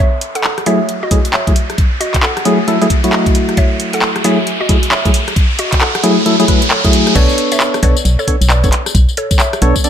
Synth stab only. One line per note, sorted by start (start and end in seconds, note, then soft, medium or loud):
0.66 0.80 F#3 medium
0.66 0.80 A3 medium
0.66 0.80 E4 medium
0.66 0.80 G#4 medium
1.11 1.19 F#3 medium
1.11 1.19 A3 medium
1.11 1.19 E4 medium
1.11 1.19 G#4 medium
1.47 1.52 F#3 medium
1.47 1.52 A3 medium
1.47 1.52 E4 medium
1.47 1.52 G#4 medium
2.45 2.59 F#3 medium
2.45 2.59 A3 medium
2.45 2.59 E4 medium
2.45 2.59 G#4 loud
2.68 2.78 F#3 medium
2.68 2.78 A3 medium
2.68 2.78 E4 medium
2.68 2.78 A4 medium
2.81 2.87 F#3 medium
2.81 2.87 A3 medium
2.81 2.87 E4 medium
2.81 2.87 G#4 loud
3.04 4.22 F#3 medium
3.04 4.22 A3 medium
3.04 4.22 E4 medium
3.04 4.22 F#4 medium
4.24 4.38 F#3 medium
4.24 4.38 A3 medium
4.24 4.38 E4 medium
4.24 4.38 G#4 medium
4.69 4.78 F#3 medium
4.69 4.78 A3 medium
4.69 4.78 E4 medium
4.69 4.78 G#4 medium
5.05 5.11 F#3 medium
5.05 5.11 A3 medium
5.05 5.11 E4 medium
5.05 5.11 G#4 medium
6.03 6.17 F#3 medium
6.03 6.17 A3 medium
6.03 6.17 E4 medium
6.03 6.17 G#4 loud
6.26 6.36 F#3 medium
6.26 6.36 A3 medium
6.26 6.36 E4 medium
6.26 6.36 A4 medium
6.40 6.45 F#3 medium
6.40 6.45 A3 medium
6.40 6.45 E4 medium
6.40 6.45 G#4 loud
6.48 6.62 F#3 medium
6.48 6.62 A3 medium
6.48 6.62 E4 medium
6.48 6.62 B4 medium
6.84 7.14 F#3 medium
6.84 7.15 A3 medium
6.84 7.14 E4 medium
6.84 7.14 G#4 loud
7.15 7.79 B3 loud
7.15 7.79 D4 medium
7.15 7.79 A4 medium
7.15 7.79 C#5 loud
7.83 7.96 B3 medium
7.83 7.96 D4 medium
7.83 7.96 A4 medium
7.83 7.96 C#5 medium
8.28 8.36 B3 medium
8.28 8.36 D4 medium
8.28 8.36 A4 medium
8.28 8.36 C#5 medium
8.64 8.69 B3 medium
8.64 8.69 D4 medium
8.64 8.69 A4 medium
8.64 8.69 C#5 medium
9.62 9.75 B3 medium
9.62 9.75 D4 medium
9.62 9.75 A4 medium
9.62 9.75 C#5 loud
9.84 9.90 B3 medium
9.84 9.90 D4 medium
9.84 9.90 A4 medium
9.84 9.90 D5 medium